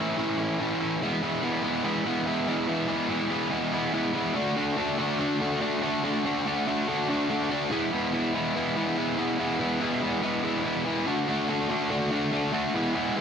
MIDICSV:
0, 0, Header, 1, 2, 480
1, 0, Start_track
1, 0, Tempo, 419580
1, 1147, Time_signature, 4, 2, 24, 8
1, 15110, End_track
2, 0, Start_track
2, 0, Title_t, "Distorted electric guitar"
2, 0, Program_c, 0, 30
2, 0, Note_on_c, 0, 52, 77
2, 0, Note_on_c, 0, 57, 62
2, 0, Note_on_c, 0, 61, 64
2, 0, Note_on_c, 0, 64, 73
2, 186, Note_off_c, 0, 52, 0
2, 189, Note_off_c, 0, 57, 0
2, 190, Note_on_c, 0, 45, 95
2, 200, Note_off_c, 0, 61, 0
2, 200, Note_on_c, 0, 52, 105
2, 203, Note_on_c, 0, 57, 96
2, 205, Note_off_c, 0, 64, 0
2, 214, Note_on_c, 0, 61, 105
2, 218, Note_on_c, 0, 64, 106
2, 416, Note_off_c, 0, 64, 0
2, 430, Note_on_c, 0, 64, 75
2, 432, Note_off_c, 0, 61, 0
2, 444, Note_off_c, 0, 57, 0
2, 446, Note_on_c, 0, 61, 73
2, 458, Note_on_c, 0, 57, 71
2, 663, Note_off_c, 0, 45, 0
2, 673, Note_off_c, 0, 52, 0
2, 677, Note_on_c, 0, 45, 89
2, 682, Note_off_c, 0, 57, 0
2, 689, Note_off_c, 0, 61, 0
2, 691, Note_off_c, 0, 64, 0
2, 691, Note_on_c, 0, 52, 97
2, 695, Note_on_c, 0, 57, 108
2, 703, Note_on_c, 0, 61, 104
2, 705, Note_on_c, 0, 64, 109
2, 906, Note_off_c, 0, 64, 0
2, 918, Note_off_c, 0, 61, 0
2, 920, Note_on_c, 0, 64, 74
2, 932, Note_on_c, 0, 61, 72
2, 934, Note_off_c, 0, 57, 0
2, 948, Note_on_c, 0, 57, 63
2, 1137, Note_off_c, 0, 45, 0
2, 1139, Note_off_c, 0, 64, 0
2, 1144, Note_off_c, 0, 52, 0
2, 1145, Note_off_c, 0, 61, 0
2, 1153, Note_off_c, 0, 57, 0
2, 1166, Note_on_c, 0, 52, 87
2, 1175, Note_on_c, 0, 56, 101
2, 1176, Note_on_c, 0, 59, 105
2, 1178, Note_on_c, 0, 64, 95
2, 1395, Note_off_c, 0, 52, 0
2, 1398, Note_off_c, 0, 56, 0
2, 1399, Note_on_c, 0, 52, 81
2, 1401, Note_off_c, 0, 59, 0
2, 1402, Note_on_c, 0, 56, 92
2, 1403, Note_off_c, 0, 64, 0
2, 1405, Note_on_c, 0, 59, 79
2, 1408, Note_on_c, 0, 64, 93
2, 1631, Note_off_c, 0, 52, 0
2, 1636, Note_on_c, 0, 52, 82
2, 1637, Note_off_c, 0, 56, 0
2, 1642, Note_on_c, 0, 56, 88
2, 1643, Note_off_c, 0, 59, 0
2, 1646, Note_off_c, 0, 64, 0
2, 1648, Note_on_c, 0, 59, 89
2, 1650, Note_on_c, 0, 64, 94
2, 1864, Note_off_c, 0, 52, 0
2, 1866, Note_off_c, 0, 56, 0
2, 1869, Note_on_c, 0, 52, 78
2, 1871, Note_on_c, 0, 56, 82
2, 1875, Note_off_c, 0, 59, 0
2, 1877, Note_off_c, 0, 64, 0
2, 1879, Note_on_c, 0, 59, 82
2, 1881, Note_on_c, 0, 64, 87
2, 2090, Note_off_c, 0, 52, 0
2, 2097, Note_off_c, 0, 56, 0
2, 2097, Note_off_c, 0, 59, 0
2, 2104, Note_on_c, 0, 52, 93
2, 2106, Note_off_c, 0, 64, 0
2, 2110, Note_on_c, 0, 56, 99
2, 2111, Note_on_c, 0, 59, 107
2, 2120, Note_on_c, 0, 64, 104
2, 2332, Note_off_c, 0, 52, 0
2, 2344, Note_off_c, 0, 56, 0
2, 2346, Note_on_c, 0, 52, 87
2, 2347, Note_off_c, 0, 59, 0
2, 2353, Note_off_c, 0, 64, 0
2, 2358, Note_on_c, 0, 56, 91
2, 2361, Note_on_c, 0, 59, 97
2, 2367, Note_on_c, 0, 64, 94
2, 2571, Note_off_c, 0, 52, 0
2, 2575, Note_off_c, 0, 56, 0
2, 2582, Note_off_c, 0, 59, 0
2, 2585, Note_on_c, 0, 52, 84
2, 2588, Note_on_c, 0, 56, 89
2, 2589, Note_off_c, 0, 64, 0
2, 2596, Note_on_c, 0, 59, 94
2, 2603, Note_on_c, 0, 64, 102
2, 2813, Note_off_c, 0, 52, 0
2, 2816, Note_off_c, 0, 56, 0
2, 2824, Note_off_c, 0, 59, 0
2, 2827, Note_off_c, 0, 64, 0
2, 2827, Note_on_c, 0, 52, 98
2, 2830, Note_on_c, 0, 56, 94
2, 2837, Note_on_c, 0, 59, 102
2, 2841, Note_on_c, 0, 64, 102
2, 3047, Note_off_c, 0, 52, 0
2, 3051, Note_off_c, 0, 56, 0
2, 3060, Note_on_c, 0, 52, 90
2, 3061, Note_off_c, 0, 59, 0
2, 3064, Note_off_c, 0, 64, 0
2, 3065, Note_on_c, 0, 56, 99
2, 3074, Note_on_c, 0, 59, 98
2, 3077, Note_on_c, 0, 64, 106
2, 3278, Note_off_c, 0, 52, 0
2, 3287, Note_off_c, 0, 56, 0
2, 3291, Note_off_c, 0, 59, 0
2, 3292, Note_on_c, 0, 52, 91
2, 3294, Note_off_c, 0, 64, 0
2, 3301, Note_on_c, 0, 56, 83
2, 3304, Note_on_c, 0, 59, 96
2, 3308, Note_on_c, 0, 64, 91
2, 3521, Note_off_c, 0, 52, 0
2, 3530, Note_off_c, 0, 59, 0
2, 3532, Note_off_c, 0, 56, 0
2, 3535, Note_on_c, 0, 52, 87
2, 3536, Note_off_c, 0, 64, 0
2, 3544, Note_on_c, 0, 59, 88
2, 3545, Note_on_c, 0, 56, 86
2, 3550, Note_on_c, 0, 64, 94
2, 3771, Note_off_c, 0, 52, 0
2, 3774, Note_off_c, 0, 56, 0
2, 3777, Note_off_c, 0, 59, 0
2, 3780, Note_off_c, 0, 64, 0
2, 3785, Note_on_c, 0, 52, 87
2, 3788, Note_on_c, 0, 56, 86
2, 3791, Note_on_c, 0, 59, 93
2, 3794, Note_on_c, 0, 64, 91
2, 3998, Note_off_c, 0, 52, 0
2, 4005, Note_off_c, 0, 56, 0
2, 4005, Note_off_c, 0, 59, 0
2, 4007, Note_off_c, 0, 64, 0
2, 4012, Note_on_c, 0, 52, 110
2, 4018, Note_on_c, 0, 56, 112
2, 4019, Note_on_c, 0, 59, 105
2, 4020, Note_on_c, 0, 64, 120
2, 4251, Note_off_c, 0, 52, 0
2, 4257, Note_off_c, 0, 56, 0
2, 4259, Note_off_c, 0, 59, 0
2, 4265, Note_on_c, 0, 52, 94
2, 4267, Note_off_c, 0, 64, 0
2, 4271, Note_on_c, 0, 56, 86
2, 4273, Note_on_c, 0, 59, 101
2, 4281, Note_on_c, 0, 64, 93
2, 4488, Note_off_c, 0, 52, 0
2, 4488, Note_off_c, 0, 56, 0
2, 4496, Note_off_c, 0, 59, 0
2, 4499, Note_off_c, 0, 64, 0
2, 4502, Note_on_c, 0, 52, 89
2, 4502, Note_on_c, 0, 56, 92
2, 4510, Note_on_c, 0, 59, 91
2, 4512, Note_on_c, 0, 64, 95
2, 4724, Note_off_c, 0, 52, 0
2, 4731, Note_off_c, 0, 56, 0
2, 4735, Note_off_c, 0, 59, 0
2, 4738, Note_on_c, 0, 52, 93
2, 4740, Note_off_c, 0, 64, 0
2, 4745, Note_on_c, 0, 56, 98
2, 4749, Note_on_c, 0, 59, 93
2, 4754, Note_on_c, 0, 64, 97
2, 4966, Note_off_c, 0, 52, 0
2, 4969, Note_off_c, 0, 56, 0
2, 4971, Note_off_c, 0, 59, 0
2, 4974, Note_off_c, 0, 64, 0
2, 4977, Note_on_c, 0, 50, 99
2, 4983, Note_on_c, 0, 57, 94
2, 4987, Note_on_c, 0, 62, 91
2, 4992, Note_on_c, 0, 66, 104
2, 5216, Note_off_c, 0, 50, 0
2, 5220, Note_on_c, 0, 50, 87
2, 5223, Note_off_c, 0, 57, 0
2, 5228, Note_on_c, 0, 57, 83
2, 5230, Note_off_c, 0, 62, 0
2, 5231, Note_off_c, 0, 66, 0
2, 5235, Note_on_c, 0, 62, 89
2, 5236, Note_on_c, 0, 66, 93
2, 5456, Note_off_c, 0, 50, 0
2, 5461, Note_on_c, 0, 50, 83
2, 5466, Note_off_c, 0, 57, 0
2, 5466, Note_off_c, 0, 62, 0
2, 5470, Note_on_c, 0, 57, 90
2, 5470, Note_on_c, 0, 62, 87
2, 5472, Note_off_c, 0, 66, 0
2, 5477, Note_on_c, 0, 66, 96
2, 5695, Note_off_c, 0, 50, 0
2, 5699, Note_on_c, 0, 50, 80
2, 5700, Note_off_c, 0, 57, 0
2, 5705, Note_off_c, 0, 62, 0
2, 5705, Note_on_c, 0, 57, 96
2, 5709, Note_on_c, 0, 62, 100
2, 5711, Note_off_c, 0, 66, 0
2, 5716, Note_on_c, 0, 66, 86
2, 5928, Note_off_c, 0, 50, 0
2, 5929, Note_off_c, 0, 57, 0
2, 5939, Note_off_c, 0, 62, 0
2, 5941, Note_on_c, 0, 50, 97
2, 5942, Note_off_c, 0, 66, 0
2, 5942, Note_on_c, 0, 57, 102
2, 5952, Note_on_c, 0, 62, 112
2, 5956, Note_on_c, 0, 66, 105
2, 6167, Note_off_c, 0, 50, 0
2, 6174, Note_off_c, 0, 57, 0
2, 6180, Note_off_c, 0, 66, 0
2, 6180, Note_on_c, 0, 50, 86
2, 6181, Note_off_c, 0, 62, 0
2, 6188, Note_on_c, 0, 57, 91
2, 6194, Note_on_c, 0, 66, 99
2, 6195, Note_on_c, 0, 62, 104
2, 6402, Note_off_c, 0, 50, 0
2, 6407, Note_off_c, 0, 57, 0
2, 6414, Note_off_c, 0, 62, 0
2, 6416, Note_on_c, 0, 50, 81
2, 6417, Note_off_c, 0, 66, 0
2, 6421, Note_on_c, 0, 57, 91
2, 6427, Note_on_c, 0, 62, 105
2, 6431, Note_on_c, 0, 66, 97
2, 6648, Note_off_c, 0, 50, 0
2, 6654, Note_off_c, 0, 57, 0
2, 6658, Note_off_c, 0, 62, 0
2, 6659, Note_off_c, 0, 66, 0
2, 6662, Note_on_c, 0, 50, 83
2, 6668, Note_on_c, 0, 57, 94
2, 6672, Note_on_c, 0, 62, 93
2, 6673, Note_on_c, 0, 66, 108
2, 6893, Note_off_c, 0, 50, 0
2, 6901, Note_off_c, 0, 57, 0
2, 6901, Note_off_c, 0, 62, 0
2, 6907, Note_off_c, 0, 66, 0
2, 6907, Note_on_c, 0, 50, 97
2, 6915, Note_on_c, 0, 57, 90
2, 6915, Note_on_c, 0, 62, 97
2, 6921, Note_on_c, 0, 66, 107
2, 7131, Note_off_c, 0, 50, 0
2, 7136, Note_off_c, 0, 57, 0
2, 7143, Note_off_c, 0, 62, 0
2, 7144, Note_on_c, 0, 50, 91
2, 7148, Note_off_c, 0, 66, 0
2, 7150, Note_on_c, 0, 57, 88
2, 7157, Note_on_c, 0, 62, 90
2, 7162, Note_on_c, 0, 66, 96
2, 7377, Note_off_c, 0, 50, 0
2, 7383, Note_off_c, 0, 57, 0
2, 7384, Note_off_c, 0, 62, 0
2, 7391, Note_off_c, 0, 66, 0
2, 7391, Note_on_c, 0, 50, 75
2, 7397, Note_on_c, 0, 57, 83
2, 7398, Note_on_c, 0, 62, 94
2, 7405, Note_on_c, 0, 66, 93
2, 7611, Note_off_c, 0, 50, 0
2, 7620, Note_off_c, 0, 57, 0
2, 7622, Note_off_c, 0, 62, 0
2, 7625, Note_on_c, 0, 50, 82
2, 7626, Note_off_c, 0, 66, 0
2, 7634, Note_on_c, 0, 57, 88
2, 7636, Note_on_c, 0, 62, 79
2, 7640, Note_on_c, 0, 66, 91
2, 7851, Note_off_c, 0, 50, 0
2, 7856, Note_off_c, 0, 57, 0
2, 7861, Note_off_c, 0, 62, 0
2, 7864, Note_on_c, 0, 50, 100
2, 7866, Note_off_c, 0, 66, 0
2, 7870, Note_on_c, 0, 57, 101
2, 7874, Note_on_c, 0, 62, 111
2, 7880, Note_on_c, 0, 66, 107
2, 8092, Note_off_c, 0, 50, 0
2, 8101, Note_off_c, 0, 57, 0
2, 8104, Note_off_c, 0, 62, 0
2, 8104, Note_off_c, 0, 66, 0
2, 8105, Note_on_c, 0, 50, 85
2, 8114, Note_on_c, 0, 57, 87
2, 8118, Note_on_c, 0, 62, 90
2, 8118, Note_on_c, 0, 66, 94
2, 8330, Note_off_c, 0, 50, 0
2, 8333, Note_off_c, 0, 57, 0
2, 8343, Note_off_c, 0, 62, 0
2, 8343, Note_off_c, 0, 66, 0
2, 8344, Note_on_c, 0, 50, 85
2, 8346, Note_on_c, 0, 57, 83
2, 8356, Note_on_c, 0, 62, 95
2, 8356, Note_on_c, 0, 66, 92
2, 8567, Note_off_c, 0, 50, 0
2, 8578, Note_off_c, 0, 57, 0
2, 8578, Note_off_c, 0, 62, 0
2, 8581, Note_off_c, 0, 66, 0
2, 8581, Note_on_c, 0, 50, 85
2, 8592, Note_on_c, 0, 57, 90
2, 8592, Note_on_c, 0, 62, 90
2, 8595, Note_on_c, 0, 66, 102
2, 8806, Note_off_c, 0, 50, 0
2, 8812, Note_off_c, 0, 57, 0
2, 8812, Note_off_c, 0, 62, 0
2, 8813, Note_off_c, 0, 66, 0
2, 8813, Note_on_c, 0, 52, 103
2, 8822, Note_on_c, 0, 56, 99
2, 8828, Note_on_c, 0, 59, 98
2, 8834, Note_on_c, 0, 64, 104
2, 9054, Note_off_c, 0, 52, 0
2, 9059, Note_on_c, 0, 52, 84
2, 9062, Note_off_c, 0, 56, 0
2, 9066, Note_off_c, 0, 59, 0
2, 9067, Note_on_c, 0, 56, 82
2, 9070, Note_on_c, 0, 59, 91
2, 9072, Note_off_c, 0, 64, 0
2, 9077, Note_on_c, 0, 64, 93
2, 9297, Note_off_c, 0, 52, 0
2, 9302, Note_on_c, 0, 52, 79
2, 9304, Note_off_c, 0, 56, 0
2, 9309, Note_on_c, 0, 56, 91
2, 9310, Note_off_c, 0, 59, 0
2, 9311, Note_off_c, 0, 64, 0
2, 9315, Note_on_c, 0, 59, 89
2, 9315, Note_on_c, 0, 64, 97
2, 9539, Note_off_c, 0, 52, 0
2, 9543, Note_on_c, 0, 52, 77
2, 9544, Note_off_c, 0, 56, 0
2, 9549, Note_off_c, 0, 59, 0
2, 9549, Note_on_c, 0, 56, 85
2, 9554, Note_off_c, 0, 64, 0
2, 9554, Note_on_c, 0, 59, 89
2, 9559, Note_on_c, 0, 64, 88
2, 9773, Note_off_c, 0, 52, 0
2, 9777, Note_off_c, 0, 56, 0
2, 9778, Note_off_c, 0, 59, 0
2, 9787, Note_on_c, 0, 52, 97
2, 9788, Note_off_c, 0, 64, 0
2, 9791, Note_on_c, 0, 56, 107
2, 9792, Note_on_c, 0, 59, 102
2, 9802, Note_on_c, 0, 64, 118
2, 10007, Note_off_c, 0, 52, 0
2, 10011, Note_off_c, 0, 56, 0
2, 10018, Note_off_c, 0, 59, 0
2, 10020, Note_off_c, 0, 64, 0
2, 10020, Note_on_c, 0, 52, 88
2, 10024, Note_on_c, 0, 56, 86
2, 10031, Note_on_c, 0, 59, 100
2, 10034, Note_on_c, 0, 64, 110
2, 10247, Note_off_c, 0, 52, 0
2, 10249, Note_off_c, 0, 56, 0
2, 10256, Note_off_c, 0, 59, 0
2, 10258, Note_off_c, 0, 64, 0
2, 10261, Note_on_c, 0, 52, 92
2, 10263, Note_on_c, 0, 56, 94
2, 10269, Note_on_c, 0, 59, 91
2, 10272, Note_on_c, 0, 64, 90
2, 10481, Note_off_c, 0, 52, 0
2, 10489, Note_off_c, 0, 59, 0
2, 10490, Note_off_c, 0, 56, 0
2, 10495, Note_on_c, 0, 52, 88
2, 10499, Note_off_c, 0, 64, 0
2, 10503, Note_on_c, 0, 56, 99
2, 10503, Note_on_c, 0, 59, 100
2, 10513, Note_on_c, 0, 64, 96
2, 10723, Note_off_c, 0, 52, 0
2, 10726, Note_off_c, 0, 56, 0
2, 10734, Note_off_c, 0, 59, 0
2, 10735, Note_off_c, 0, 64, 0
2, 10737, Note_on_c, 0, 52, 90
2, 10740, Note_on_c, 0, 56, 103
2, 10748, Note_on_c, 0, 59, 109
2, 10748, Note_on_c, 0, 64, 99
2, 10960, Note_off_c, 0, 52, 0
2, 10969, Note_off_c, 0, 56, 0
2, 10974, Note_on_c, 0, 52, 94
2, 10978, Note_off_c, 0, 59, 0
2, 10979, Note_off_c, 0, 64, 0
2, 10982, Note_on_c, 0, 56, 89
2, 10992, Note_on_c, 0, 59, 93
2, 10992, Note_on_c, 0, 64, 97
2, 11204, Note_off_c, 0, 52, 0
2, 11209, Note_off_c, 0, 56, 0
2, 11211, Note_off_c, 0, 59, 0
2, 11216, Note_off_c, 0, 64, 0
2, 11218, Note_on_c, 0, 52, 82
2, 11223, Note_on_c, 0, 56, 88
2, 11225, Note_on_c, 0, 59, 96
2, 11230, Note_on_c, 0, 64, 99
2, 11441, Note_off_c, 0, 52, 0
2, 11444, Note_off_c, 0, 56, 0
2, 11450, Note_off_c, 0, 59, 0
2, 11454, Note_on_c, 0, 52, 82
2, 11458, Note_off_c, 0, 64, 0
2, 11458, Note_on_c, 0, 56, 80
2, 11463, Note_on_c, 0, 59, 94
2, 11471, Note_on_c, 0, 64, 94
2, 11679, Note_off_c, 0, 52, 0
2, 11685, Note_off_c, 0, 56, 0
2, 11686, Note_off_c, 0, 59, 0
2, 11693, Note_on_c, 0, 52, 111
2, 11695, Note_off_c, 0, 64, 0
2, 11699, Note_on_c, 0, 56, 106
2, 11699, Note_on_c, 0, 59, 118
2, 11709, Note_on_c, 0, 64, 111
2, 11924, Note_off_c, 0, 52, 0
2, 11928, Note_off_c, 0, 56, 0
2, 11936, Note_off_c, 0, 59, 0
2, 11938, Note_on_c, 0, 52, 97
2, 11939, Note_off_c, 0, 64, 0
2, 11942, Note_on_c, 0, 56, 90
2, 11950, Note_on_c, 0, 59, 91
2, 11952, Note_on_c, 0, 64, 101
2, 12157, Note_off_c, 0, 52, 0
2, 12162, Note_off_c, 0, 56, 0
2, 12169, Note_off_c, 0, 64, 0
2, 12170, Note_on_c, 0, 52, 90
2, 12171, Note_off_c, 0, 59, 0
2, 12176, Note_on_c, 0, 56, 90
2, 12183, Note_on_c, 0, 64, 92
2, 12185, Note_on_c, 0, 59, 103
2, 12409, Note_off_c, 0, 52, 0
2, 12415, Note_off_c, 0, 56, 0
2, 12421, Note_off_c, 0, 59, 0
2, 12423, Note_off_c, 0, 64, 0
2, 12423, Note_on_c, 0, 52, 92
2, 12429, Note_on_c, 0, 56, 92
2, 12434, Note_on_c, 0, 59, 98
2, 12437, Note_on_c, 0, 64, 100
2, 12648, Note_off_c, 0, 52, 0
2, 12651, Note_off_c, 0, 56, 0
2, 12654, Note_off_c, 0, 59, 0
2, 12655, Note_off_c, 0, 64, 0
2, 12660, Note_on_c, 0, 50, 95
2, 12667, Note_on_c, 0, 57, 99
2, 12673, Note_on_c, 0, 62, 105
2, 12675, Note_on_c, 0, 66, 114
2, 12886, Note_off_c, 0, 50, 0
2, 12893, Note_off_c, 0, 57, 0
2, 12897, Note_off_c, 0, 62, 0
2, 12900, Note_on_c, 0, 50, 89
2, 12903, Note_off_c, 0, 66, 0
2, 12907, Note_on_c, 0, 57, 94
2, 12911, Note_on_c, 0, 62, 92
2, 12916, Note_on_c, 0, 66, 100
2, 13121, Note_off_c, 0, 50, 0
2, 13128, Note_off_c, 0, 57, 0
2, 13129, Note_off_c, 0, 62, 0
2, 13135, Note_on_c, 0, 50, 82
2, 13136, Note_off_c, 0, 66, 0
2, 13142, Note_on_c, 0, 57, 89
2, 13143, Note_on_c, 0, 62, 88
2, 13149, Note_on_c, 0, 66, 105
2, 13364, Note_off_c, 0, 50, 0
2, 13370, Note_off_c, 0, 57, 0
2, 13377, Note_off_c, 0, 62, 0
2, 13377, Note_on_c, 0, 50, 81
2, 13380, Note_off_c, 0, 66, 0
2, 13384, Note_on_c, 0, 57, 94
2, 13391, Note_on_c, 0, 62, 102
2, 13394, Note_on_c, 0, 66, 95
2, 13598, Note_off_c, 0, 50, 0
2, 13603, Note_off_c, 0, 57, 0
2, 13604, Note_off_c, 0, 62, 0
2, 13611, Note_on_c, 0, 50, 98
2, 13613, Note_off_c, 0, 66, 0
2, 13617, Note_on_c, 0, 57, 107
2, 13618, Note_on_c, 0, 62, 107
2, 13627, Note_on_c, 0, 66, 119
2, 13840, Note_off_c, 0, 50, 0
2, 13845, Note_off_c, 0, 57, 0
2, 13847, Note_off_c, 0, 62, 0
2, 13854, Note_on_c, 0, 50, 92
2, 13855, Note_off_c, 0, 66, 0
2, 13858, Note_on_c, 0, 57, 100
2, 13860, Note_on_c, 0, 62, 103
2, 13869, Note_on_c, 0, 66, 100
2, 14082, Note_off_c, 0, 50, 0
2, 14082, Note_off_c, 0, 57, 0
2, 14087, Note_off_c, 0, 62, 0
2, 14092, Note_off_c, 0, 66, 0
2, 14095, Note_on_c, 0, 57, 94
2, 14096, Note_on_c, 0, 50, 88
2, 14101, Note_on_c, 0, 62, 90
2, 14106, Note_on_c, 0, 66, 100
2, 14314, Note_off_c, 0, 50, 0
2, 14318, Note_off_c, 0, 57, 0
2, 14324, Note_off_c, 0, 62, 0
2, 14327, Note_on_c, 0, 50, 95
2, 14328, Note_off_c, 0, 66, 0
2, 14331, Note_on_c, 0, 57, 97
2, 14338, Note_on_c, 0, 62, 92
2, 14342, Note_on_c, 0, 66, 108
2, 14562, Note_off_c, 0, 50, 0
2, 14564, Note_off_c, 0, 57, 0
2, 14567, Note_off_c, 0, 62, 0
2, 14569, Note_off_c, 0, 66, 0
2, 14581, Note_on_c, 0, 52, 90
2, 14581, Note_on_c, 0, 56, 96
2, 14589, Note_on_c, 0, 59, 106
2, 14590, Note_on_c, 0, 64, 113
2, 14803, Note_off_c, 0, 52, 0
2, 14806, Note_off_c, 0, 56, 0
2, 14807, Note_off_c, 0, 59, 0
2, 14813, Note_off_c, 0, 64, 0
2, 14817, Note_on_c, 0, 52, 82
2, 14819, Note_on_c, 0, 56, 82
2, 14821, Note_on_c, 0, 59, 95
2, 14826, Note_on_c, 0, 64, 93
2, 15046, Note_off_c, 0, 56, 0
2, 15047, Note_off_c, 0, 52, 0
2, 15054, Note_off_c, 0, 59, 0
2, 15056, Note_off_c, 0, 64, 0
2, 15060, Note_on_c, 0, 56, 88
2, 15061, Note_on_c, 0, 52, 90
2, 15068, Note_on_c, 0, 59, 94
2, 15069, Note_on_c, 0, 64, 99
2, 15110, Note_off_c, 0, 52, 0
2, 15110, Note_off_c, 0, 56, 0
2, 15110, Note_off_c, 0, 59, 0
2, 15110, Note_off_c, 0, 64, 0
2, 15110, End_track
0, 0, End_of_file